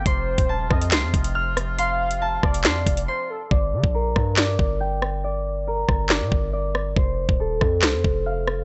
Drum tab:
HH |x--x---xx-xx--x-|x--x---xx-xx----|----------------|----------------|
CP |--------x-------|--------x-------|--------x-------|--------x-------|
SD |------r-o-----r-|------r-o-------|------r-o-----r-|------r-o-----r-|
BD |o--o--o---o-----|------o---o-----|o--o--o---o-----|------o---o-----|

HH |----------------|
CP |--------x-------|
SD |------r-o-----r-|
BD |o--o--o---o-----|